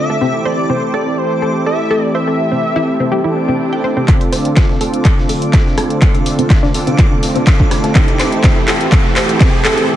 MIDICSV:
0, 0, Header, 1, 9, 480
1, 0, Start_track
1, 0, Key_signature, -1, "minor"
1, 0, Tempo, 483871
1, 210, Time_signature, 4, 2, 24, 8
1, 9882, End_track
2, 0, Start_track
2, 0, Title_t, "Synth texture"
2, 0, Program_c, 0, 99
2, 0, Note_on_c, 0, 86, 81
2, 4039, Note_off_c, 0, 86, 0
2, 4051, Note_on_c, 0, 86, 82
2, 9811, Note_off_c, 0, 86, 0
2, 9882, End_track
3, 0, Start_track
3, 0, Title_t, "Analog synth lead"
3, 0, Program_c, 1, 81
3, 0, Note_on_c, 1, 76, 114
3, 449, Note_on_c, 1, 74, 99
3, 464, Note_off_c, 1, 76, 0
3, 690, Note_on_c, 1, 72, 90
3, 705, Note_off_c, 1, 74, 0
3, 929, Note_on_c, 1, 74, 98
3, 944, Note_off_c, 1, 72, 0
3, 1168, Note_on_c, 1, 72, 101
3, 1183, Note_off_c, 1, 74, 0
3, 1642, Note_off_c, 1, 72, 0
3, 1648, Note_on_c, 1, 76, 107
3, 2096, Note_off_c, 1, 76, 0
3, 2128, Note_on_c, 1, 76, 108
3, 3530, Note_off_c, 1, 76, 0
3, 9882, End_track
4, 0, Start_track
4, 0, Title_t, "Synth arpeggio sound"
4, 0, Program_c, 2, 84
4, 97, Note_on_c, 2, 69, 77
4, 173, Note_off_c, 2, 69, 0
4, 211, Note_on_c, 2, 60, 85
4, 296, Note_off_c, 2, 60, 0
4, 451, Note_on_c, 2, 72, 99
4, 485, Note_off_c, 2, 72, 0
4, 691, Note_on_c, 2, 60, 96
4, 776, Note_off_c, 2, 60, 0
4, 931, Note_on_c, 2, 69, 98
4, 987, Note_off_c, 2, 69, 0
4, 1411, Note_on_c, 2, 69, 75
4, 1445, Note_off_c, 2, 69, 0
4, 1651, Note_on_c, 2, 69, 79
4, 1685, Note_off_c, 2, 69, 0
4, 1891, Note_on_c, 2, 69, 101
4, 1947, Note_off_c, 2, 69, 0
4, 2131, Note_on_c, 2, 72, 85
4, 2187, Note_off_c, 2, 72, 0
4, 2257, Note_on_c, 2, 69, 72
4, 2308, Note_off_c, 2, 69, 0
4, 2497, Note_on_c, 2, 60, 76
4, 2548, Note_off_c, 2, 60, 0
4, 2737, Note_on_c, 2, 64, 105
4, 2788, Note_off_c, 2, 64, 0
4, 2977, Note_on_c, 2, 60, 76
4, 3028, Note_off_c, 2, 60, 0
4, 3091, Note_on_c, 2, 67, 82
4, 3176, Note_off_c, 2, 67, 0
4, 3217, Note_on_c, 2, 64, 78
4, 3268, Note_off_c, 2, 64, 0
4, 3457, Note_on_c, 2, 60, 81
4, 3487, Note_off_c, 2, 60, 0
4, 3696, Note_on_c, 2, 79, 75
4, 3747, Note_off_c, 2, 79, 0
4, 3810, Note_on_c, 2, 72, 74
4, 3844, Note_off_c, 2, 72, 0
4, 3936, Note_on_c, 2, 60, 77
4, 3967, Note_off_c, 2, 60, 0
4, 4050, Note_on_c, 2, 60, 84
4, 4135, Note_off_c, 2, 60, 0
4, 4290, Note_on_c, 2, 72, 97
4, 4324, Note_off_c, 2, 72, 0
4, 4529, Note_on_c, 2, 60, 95
4, 4615, Note_off_c, 2, 60, 0
4, 4770, Note_on_c, 2, 69, 101
4, 4827, Note_off_c, 2, 69, 0
4, 5250, Note_on_c, 2, 69, 74
4, 5284, Note_off_c, 2, 69, 0
4, 5490, Note_on_c, 2, 69, 83
4, 5524, Note_off_c, 2, 69, 0
4, 5730, Note_on_c, 2, 69, 102
4, 5787, Note_off_c, 2, 69, 0
4, 5970, Note_on_c, 2, 72, 84
4, 6027, Note_off_c, 2, 72, 0
4, 6096, Note_on_c, 2, 69, 81
4, 6148, Note_off_c, 2, 69, 0
4, 6336, Note_on_c, 2, 60, 80
4, 6387, Note_off_c, 2, 60, 0
4, 6576, Note_on_c, 2, 62, 108
4, 6627, Note_off_c, 2, 62, 0
4, 6816, Note_on_c, 2, 60, 77
4, 6868, Note_off_c, 2, 60, 0
4, 6930, Note_on_c, 2, 65, 80
4, 7015, Note_off_c, 2, 65, 0
4, 7056, Note_on_c, 2, 62, 77
4, 7107, Note_off_c, 2, 62, 0
4, 7296, Note_on_c, 2, 60, 84
4, 7347, Note_off_c, 2, 60, 0
4, 7537, Note_on_c, 2, 62, 74
4, 7613, Note_off_c, 2, 62, 0
4, 7776, Note_on_c, 2, 69, 78
4, 7853, Note_off_c, 2, 69, 0
4, 7890, Note_on_c, 2, 60, 76
4, 7975, Note_off_c, 2, 60, 0
4, 8130, Note_on_c, 2, 72, 93
4, 8164, Note_off_c, 2, 72, 0
4, 8370, Note_on_c, 2, 60, 93
4, 8455, Note_off_c, 2, 60, 0
4, 8610, Note_on_c, 2, 69, 97
4, 8667, Note_off_c, 2, 69, 0
4, 8850, Note_on_c, 2, 60, 77
4, 8935, Note_off_c, 2, 60, 0
4, 9090, Note_on_c, 2, 72, 90
4, 9124, Note_off_c, 2, 72, 0
4, 9330, Note_on_c, 2, 60, 97
4, 9415, Note_off_c, 2, 60, 0
4, 9570, Note_on_c, 2, 69, 99
4, 9627, Note_off_c, 2, 69, 0
4, 9882, End_track
5, 0, Start_track
5, 0, Title_t, "Supersaw synth"
5, 0, Program_c, 3, 81
5, 0, Note_on_c, 3, 60, 82
5, 0, Note_on_c, 3, 62, 73
5, 0, Note_on_c, 3, 65, 72
5, 0, Note_on_c, 3, 69, 85
5, 183, Note_off_c, 3, 60, 0
5, 183, Note_off_c, 3, 62, 0
5, 183, Note_off_c, 3, 65, 0
5, 183, Note_off_c, 3, 69, 0
5, 210, Note_on_c, 3, 60, 81
5, 210, Note_on_c, 3, 64, 69
5, 210, Note_on_c, 3, 67, 75
5, 210, Note_on_c, 3, 69, 86
5, 4023, Note_off_c, 3, 60, 0
5, 4023, Note_off_c, 3, 64, 0
5, 4023, Note_off_c, 3, 67, 0
5, 4023, Note_off_c, 3, 69, 0
5, 4050, Note_on_c, 3, 60, 105
5, 4050, Note_on_c, 3, 62, 99
5, 4050, Note_on_c, 3, 65, 93
5, 4050, Note_on_c, 3, 69, 117
5, 4743, Note_off_c, 3, 60, 0
5, 4743, Note_off_c, 3, 62, 0
5, 4743, Note_off_c, 3, 65, 0
5, 4743, Note_off_c, 3, 69, 0
5, 4770, Note_on_c, 3, 60, 89
5, 4770, Note_on_c, 3, 62, 81
5, 4770, Note_on_c, 3, 65, 80
5, 4771, Note_on_c, 3, 69, 94
5, 5943, Note_off_c, 3, 60, 0
5, 5943, Note_off_c, 3, 62, 0
5, 5943, Note_off_c, 3, 65, 0
5, 5943, Note_off_c, 3, 69, 0
5, 5970, Note_on_c, 3, 60, 85
5, 5970, Note_on_c, 3, 62, 75
5, 5970, Note_on_c, 3, 65, 78
5, 5970, Note_on_c, 3, 69, 96
5, 6663, Note_off_c, 3, 60, 0
5, 6663, Note_off_c, 3, 62, 0
5, 6663, Note_off_c, 3, 65, 0
5, 6663, Note_off_c, 3, 69, 0
5, 6690, Note_on_c, 3, 60, 90
5, 6690, Note_on_c, 3, 62, 83
5, 6690, Note_on_c, 3, 65, 85
5, 6690, Note_on_c, 3, 69, 103
5, 7863, Note_off_c, 3, 60, 0
5, 7863, Note_off_c, 3, 62, 0
5, 7863, Note_off_c, 3, 65, 0
5, 7863, Note_off_c, 3, 69, 0
5, 7890, Note_on_c, 3, 60, 95
5, 7890, Note_on_c, 3, 64, 85
5, 7890, Note_on_c, 3, 67, 87
5, 7890, Note_on_c, 3, 69, 103
5, 8583, Note_off_c, 3, 60, 0
5, 8583, Note_off_c, 3, 64, 0
5, 8583, Note_off_c, 3, 67, 0
5, 8583, Note_off_c, 3, 69, 0
5, 8610, Note_on_c, 3, 60, 85
5, 8610, Note_on_c, 3, 64, 78
5, 8610, Note_on_c, 3, 67, 77
5, 8610, Note_on_c, 3, 69, 88
5, 8832, Note_off_c, 3, 60, 0
5, 8832, Note_off_c, 3, 64, 0
5, 8832, Note_off_c, 3, 67, 0
5, 8832, Note_off_c, 3, 69, 0
5, 8850, Note_on_c, 3, 60, 95
5, 8850, Note_on_c, 3, 64, 84
5, 8851, Note_on_c, 3, 67, 84
5, 8851, Note_on_c, 3, 69, 106
5, 9543, Note_off_c, 3, 60, 0
5, 9543, Note_off_c, 3, 64, 0
5, 9543, Note_off_c, 3, 67, 0
5, 9543, Note_off_c, 3, 69, 0
5, 9571, Note_on_c, 3, 60, 95
5, 9571, Note_on_c, 3, 64, 81
5, 9571, Note_on_c, 3, 67, 84
5, 9571, Note_on_c, 3, 69, 103
5, 9792, Note_off_c, 3, 60, 0
5, 9792, Note_off_c, 3, 64, 0
5, 9792, Note_off_c, 3, 67, 0
5, 9792, Note_off_c, 3, 69, 0
5, 9882, End_track
6, 0, Start_track
6, 0, Title_t, "Analog synth pad"
6, 0, Program_c, 4, 89
6, 0, Note_on_c, 4, 50, 75
6, 0, Note_on_c, 4, 57, 70
6, 0, Note_on_c, 4, 60, 69
6, 0, Note_on_c, 4, 65, 83
6, 171, Note_off_c, 4, 57, 0
6, 171, Note_off_c, 4, 60, 0
6, 172, Note_off_c, 4, 50, 0
6, 172, Note_off_c, 4, 65, 0
6, 211, Note_on_c, 4, 52, 82
6, 211, Note_on_c, 4, 57, 72
6, 211, Note_on_c, 4, 60, 73
6, 211, Note_on_c, 4, 67, 89
6, 4012, Note_off_c, 4, 52, 0
6, 4012, Note_off_c, 4, 57, 0
6, 4012, Note_off_c, 4, 60, 0
6, 4013, Note_off_c, 4, 67, 0
6, 4050, Note_on_c, 4, 50, 73
6, 4050, Note_on_c, 4, 57, 72
6, 4050, Note_on_c, 4, 60, 72
6, 4050, Note_on_c, 4, 65, 82
6, 5951, Note_off_c, 4, 60, 0
6, 5970, Note_on_c, 4, 62, 68
6, 7852, Note_off_c, 4, 50, 0
6, 7852, Note_off_c, 4, 65, 0
6, 7871, Note_off_c, 4, 62, 0
6, 7889, Note_on_c, 4, 60, 71
6, 7890, Note_on_c, 4, 52, 82
6, 7890, Note_on_c, 4, 67, 92
6, 9791, Note_off_c, 4, 60, 0
6, 9813, Note_on_c, 4, 47, 70
6, 9882, Note_off_c, 4, 47, 0
6, 9882, Note_off_c, 4, 52, 0
6, 9882, Note_off_c, 4, 57, 0
6, 9882, Note_off_c, 4, 67, 0
6, 9882, End_track
7, 0, Start_track
7, 0, Title_t, "Riser"
7, 0, Program_c, 5, 103
7, 4051, Note_on_c, 5, 60, 77
7, 9811, Note_off_c, 5, 60, 0
7, 9882, End_track
8, 0, Start_track
8, 0, Title_t, "Swell"
8, 0, Program_c, 6, 103
8, 3091, Note_on_c, 6, 60, 75
8, 4051, Note_off_c, 6, 60, 0
8, 9882, End_track
9, 0, Start_track
9, 0, Title_t, "Drums"
9, 4050, Note_on_c, 9, 39, 45
9, 4050, Note_on_c, 9, 42, 74
9, 4051, Note_on_c, 9, 36, 106
9, 4149, Note_off_c, 9, 39, 0
9, 4149, Note_off_c, 9, 42, 0
9, 4150, Note_off_c, 9, 36, 0
9, 4176, Note_on_c, 9, 42, 38
9, 4275, Note_off_c, 9, 42, 0
9, 4290, Note_on_c, 9, 38, 54
9, 4290, Note_on_c, 9, 42, 66
9, 4290, Note_on_c, 9, 46, 94
9, 4389, Note_off_c, 9, 38, 0
9, 4389, Note_off_c, 9, 42, 0
9, 4389, Note_off_c, 9, 46, 0
9, 4416, Note_on_c, 9, 42, 55
9, 4515, Note_off_c, 9, 42, 0
9, 4530, Note_on_c, 9, 36, 110
9, 4530, Note_on_c, 9, 38, 112
9, 4530, Note_on_c, 9, 39, 47
9, 4530, Note_on_c, 9, 42, 73
9, 4629, Note_off_c, 9, 38, 0
9, 4629, Note_off_c, 9, 39, 0
9, 4629, Note_off_c, 9, 42, 0
9, 4630, Note_off_c, 9, 36, 0
9, 4656, Note_on_c, 9, 38, 44
9, 4755, Note_off_c, 9, 38, 0
9, 4770, Note_on_c, 9, 42, 63
9, 4770, Note_on_c, 9, 46, 94
9, 4869, Note_off_c, 9, 42, 0
9, 4869, Note_off_c, 9, 46, 0
9, 4896, Note_on_c, 9, 42, 52
9, 4995, Note_off_c, 9, 42, 0
9, 5010, Note_on_c, 9, 36, 117
9, 5010, Note_on_c, 9, 39, 50
9, 5010, Note_on_c, 9, 42, 79
9, 5109, Note_off_c, 9, 36, 0
9, 5109, Note_off_c, 9, 39, 0
9, 5109, Note_off_c, 9, 42, 0
9, 5136, Note_on_c, 9, 38, 39
9, 5235, Note_off_c, 9, 38, 0
9, 5250, Note_on_c, 9, 46, 100
9, 5349, Note_off_c, 9, 46, 0
9, 5376, Note_on_c, 9, 42, 43
9, 5475, Note_off_c, 9, 42, 0
9, 5490, Note_on_c, 9, 36, 120
9, 5490, Note_on_c, 9, 38, 112
9, 5490, Note_on_c, 9, 39, 55
9, 5490, Note_on_c, 9, 42, 79
9, 5589, Note_off_c, 9, 36, 0
9, 5589, Note_off_c, 9, 38, 0
9, 5589, Note_off_c, 9, 39, 0
9, 5589, Note_off_c, 9, 42, 0
9, 5616, Note_on_c, 9, 38, 40
9, 5715, Note_off_c, 9, 38, 0
9, 5730, Note_on_c, 9, 37, 67
9, 5730, Note_on_c, 9, 42, 67
9, 5730, Note_on_c, 9, 46, 88
9, 5829, Note_off_c, 9, 37, 0
9, 5829, Note_off_c, 9, 42, 0
9, 5829, Note_off_c, 9, 46, 0
9, 5857, Note_on_c, 9, 42, 53
9, 5956, Note_off_c, 9, 42, 0
9, 5970, Note_on_c, 9, 36, 120
9, 5970, Note_on_c, 9, 39, 55
9, 5970, Note_on_c, 9, 42, 81
9, 6069, Note_off_c, 9, 36, 0
9, 6069, Note_off_c, 9, 39, 0
9, 6069, Note_off_c, 9, 42, 0
9, 6096, Note_on_c, 9, 42, 43
9, 6195, Note_off_c, 9, 42, 0
9, 6210, Note_on_c, 9, 38, 46
9, 6210, Note_on_c, 9, 42, 64
9, 6210, Note_on_c, 9, 46, 109
9, 6309, Note_off_c, 9, 38, 0
9, 6309, Note_off_c, 9, 42, 0
9, 6309, Note_off_c, 9, 46, 0
9, 6336, Note_on_c, 9, 42, 53
9, 6436, Note_off_c, 9, 42, 0
9, 6450, Note_on_c, 9, 36, 119
9, 6450, Note_on_c, 9, 38, 107
9, 6450, Note_on_c, 9, 39, 58
9, 6450, Note_on_c, 9, 42, 73
9, 6549, Note_off_c, 9, 36, 0
9, 6549, Note_off_c, 9, 38, 0
9, 6550, Note_off_c, 9, 39, 0
9, 6550, Note_off_c, 9, 42, 0
9, 6576, Note_on_c, 9, 38, 41
9, 6675, Note_off_c, 9, 38, 0
9, 6690, Note_on_c, 9, 42, 64
9, 6690, Note_on_c, 9, 46, 98
9, 6790, Note_off_c, 9, 42, 0
9, 6790, Note_off_c, 9, 46, 0
9, 6816, Note_on_c, 9, 42, 44
9, 6817, Note_off_c, 9, 42, 0
9, 6817, Note_on_c, 9, 42, 53
9, 6916, Note_off_c, 9, 42, 0
9, 6930, Note_on_c, 9, 36, 122
9, 6930, Note_on_c, 9, 39, 64
9, 6930, Note_on_c, 9, 42, 83
9, 7029, Note_off_c, 9, 36, 0
9, 7029, Note_off_c, 9, 39, 0
9, 7030, Note_off_c, 9, 42, 0
9, 7170, Note_on_c, 9, 46, 108
9, 7171, Note_on_c, 9, 38, 54
9, 7171, Note_on_c, 9, 42, 68
9, 7270, Note_off_c, 9, 38, 0
9, 7270, Note_off_c, 9, 42, 0
9, 7270, Note_off_c, 9, 46, 0
9, 7297, Note_on_c, 9, 42, 41
9, 7396, Note_off_c, 9, 42, 0
9, 7410, Note_on_c, 9, 36, 115
9, 7410, Note_on_c, 9, 38, 113
9, 7410, Note_on_c, 9, 42, 82
9, 7411, Note_off_c, 9, 42, 0
9, 7411, Note_on_c, 9, 39, 73
9, 7411, Note_on_c, 9, 42, 80
9, 7509, Note_off_c, 9, 36, 0
9, 7510, Note_off_c, 9, 38, 0
9, 7510, Note_off_c, 9, 39, 0
9, 7510, Note_off_c, 9, 42, 0
9, 7536, Note_on_c, 9, 36, 67
9, 7635, Note_off_c, 9, 36, 0
9, 7650, Note_on_c, 9, 37, 63
9, 7650, Note_on_c, 9, 38, 42
9, 7650, Note_on_c, 9, 42, 70
9, 7650, Note_on_c, 9, 46, 96
9, 7749, Note_off_c, 9, 37, 0
9, 7749, Note_off_c, 9, 46, 0
9, 7750, Note_off_c, 9, 38, 0
9, 7750, Note_off_c, 9, 42, 0
9, 7776, Note_on_c, 9, 38, 37
9, 7776, Note_on_c, 9, 42, 57
9, 7875, Note_off_c, 9, 38, 0
9, 7875, Note_off_c, 9, 42, 0
9, 7890, Note_on_c, 9, 36, 118
9, 7890, Note_on_c, 9, 39, 73
9, 7890, Note_on_c, 9, 42, 89
9, 7989, Note_off_c, 9, 36, 0
9, 7989, Note_off_c, 9, 39, 0
9, 7989, Note_off_c, 9, 42, 0
9, 8016, Note_on_c, 9, 42, 45
9, 8115, Note_off_c, 9, 42, 0
9, 8130, Note_on_c, 9, 38, 54
9, 8130, Note_on_c, 9, 39, 72
9, 8130, Note_on_c, 9, 42, 65
9, 8130, Note_on_c, 9, 46, 109
9, 8229, Note_off_c, 9, 38, 0
9, 8229, Note_off_c, 9, 42, 0
9, 8230, Note_off_c, 9, 39, 0
9, 8230, Note_off_c, 9, 46, 0
9, 8257, Note_on_c, 9, 42, 52
9, 8356, Note_off_c, 9, 42, 0
9, 8370, Note_on_c, 9, 36, 113
9, 8370, Note_on_c, 9, 38, 115
9, 8370, Note_on_c, 9, 39, 74
9, 8370, Note_on_c, 9, 42, 85
9, 8469, Note_off_c, 9, 38, 0
9, 8469, Note_off_c, 9, 39, 0
9, 8469, Note_off_c, 9, 42, 0
9, 8470, Note_off_c, 9, 36, 0
9, 8496, Note_on_c, 9, 38, 48
9, 8595, Note_off_c, 9, 38, 0
9, 8610, Note_on_c, 9, 39, 86
9, 8610, Note_on_c, 9, 42, 68
9, 8610, Note_on_c, 9, 46, 107
9, 8709, Note_off_c, 9, 39, 0
9, 8709, Note_off_c, 9, 42, 0
9, 8709, Note_off_c, 9, 46, 0
9, 8736, Note_on_c, 9, 42, 53
9, 8836, Note_off_c, 9, 42, 0
9, 8850, Note_on_c, 9, 39, 82
9, 8850, Note_on_c, 9, 42, 78
9, 8851, Note_on_c, 9, 36, 127
9, 8949, Note_off_c, 9, 39, 0
9, 8949, Note_off_c, 9, 42, 0
9, 8950, Note_off_c, 9, 36, 0
9, 8977, Note_on_c, 9, 38, 41
9, 9076, Note_off_c, 9, 38, 0
9, 9090, Note_on_c, 9, 46, 78
9, 9091, Note_off_c, 9, 46, 0
9, 9091, Note_on_c, 9, 39, 87
9, 9091, Note_on_c, 9, 46, 114
9, 9190, Note_off_c, 9, 39, 0
9, 9190, Note_off_c, 9, 46, 0
9, 9216, Note_on_c, 9, 42, 44
9, 9217, Note_off_c, 9, 42, 0
9, 9217, Note_on_c, 9, 42, 49
9, 9316, Note_off_c, 9, 42, 0
9, 9330, Note_on_c, 9, 38, 119
9, 9330, Note_on_c, 9, 42, 88
9, 9331, Note_off_c, 9, 42, 0
9, 9331, Note_on_c, 9, 36, 124
9, 9331, Note_on_c, 9, 39, 88
9, 9331, Note_on_c, 9, 42, 80
9, 9430, Note_off_c, 9, 36, 0
9, 9430, Note_off_c, 9, 38, 0
9, 9430, Note_off_c, 9, 39, 0
9, 9430, Note_off_c, 9, 42, 0
9, 9457, Note_on_c, 9, 38, 42
9, 9556, Note_off_c, 9, 38, 0
9, 9571, Note_on_c, 9, 39, 86
9, 9571, Note_on_c, 9, 42, 67
9, 9571, Note_on_c, 9, 46, 93
9, 9670, Note_off_c, 9, 39, 0
9, 9670, Note_off_c, 9, 42, 0
9, 9670, Note_off_c, 9, 46, 0
9, 9697, Note_on_c, 9, 42, 53
9, 9796, Note_off_c, 9, 42, 0
9, 9882, End_track
0, 0, End_of_file